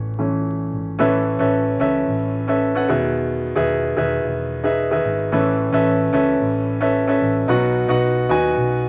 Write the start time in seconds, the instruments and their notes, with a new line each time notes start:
Already playing: fingered electric bass A1, grand piano E3 A3 C#4 C#5
0.19 grand piano E3 A3 C#4
0.73 fingered electric bass G#1
0.99 fingered electric bass A1, grand piano A2 E3 C#4 A4 B4 E5
1.39 fingered electric bass A1, grand piano C#4 A4 B4 E5
1.80 fingered electric bass C#2, grand piano C#4 A4 B4 E5
2.08 fingered electric bass A1
2.47 grand piano C#4 A4 B4 E5
2.75 grand piano C#4 A4 B4 F#5
2.88 fingered electric bass E1, grand piano B2 D#3 G#4 B4 E5
3.55 fingered electric bass E1, grand piano D#3 G#4 B4 E5
3.96 fingered electric bass E1, grand piano D#3 G#4 B4 E5
4.24 fingered electric bass E1
4.63 grand piano D#4 G#4 B4 E5
4.91 grand piano D#3 G#4 B4 E5
5.05 fingered electric bass G#1
5.32 fingered electric bass A1, grand piano A2 E3 C#4 A4 B4 E5
5.72 fingered electric bass A1, grand piano C#4 A4 B4 E5
6.13 fingered electric bass C#2, grand piano C#4 A4 B4 E5
6.41 fingered electric bass A1
6.81 grand piano C#4 A4 B4 E5
7.07 grand piano C#4 A4 B4 E5
7.22 fingered electric bass A1
7.48 fingered electric bass B1, grand piano B2 F#3 D#4 F#4 B4 F#5
7.88 fingered electric bass B1, grand piano D#4 F#4 B4 F#5
8.29 fingered electric bass D#2, grand piano D#4 F#4 B4 G#5
8.57 fingered electric bass B1